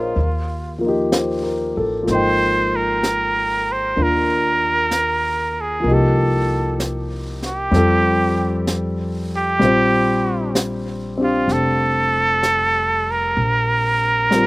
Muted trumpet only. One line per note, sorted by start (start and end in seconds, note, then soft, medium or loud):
0.00 0.82 F4 medium
2.12 2.77 C5 medium
2.76 3.73 A#4 medium
3.72 4.04 C5 medium
4.02 5.62 A#4 medium
5.61 5.95 G#4 medium
5.94 6.83 A4 medium
7.46 8.65 G4 medium
9.35 10.53 G4 medium
11.23 11.54 F4 medium
11.52 13.12 A4 medium
13.11 14.47 A#4 medium